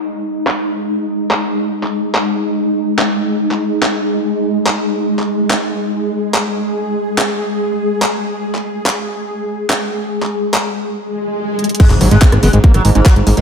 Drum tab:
CC |--------------------------------|--------------------------------|--------------------------------|--------------------------------|
HH |--------------------------------|--------------------------------|--------------------------------|--------------------------------|
CP |--------x---------------x-------|--x-----x---------------x-------|--x-----x---------------x-------|--x-----x---------------x-------|
SD |--------------------------------|--------------------------------|--------------------------------|--------------------------------|
BD |--------------------------------|--------------------------------|--------------------------------|--------------------------------|

CC |--------------------------------|--------------------------------|--------------------------------|x-------------------------------|
HH |--------------------------------|--------------------------------|----------------------------xxxx|x-x-o-x-x-x-o-x-x-x-o-x-x-x-o-x-|
CP |--------x---------------x-------|--x-----x---------------x-------|--x-----x-----------------------|--x-----x---------------x-------|
SD |--------------------------------|--------------------------------|--------------------------------|----r-----r-------r-----r-------|
BD |--------------------------------|--------------------------------|--------------------------------|o-------o-------o-------o-------|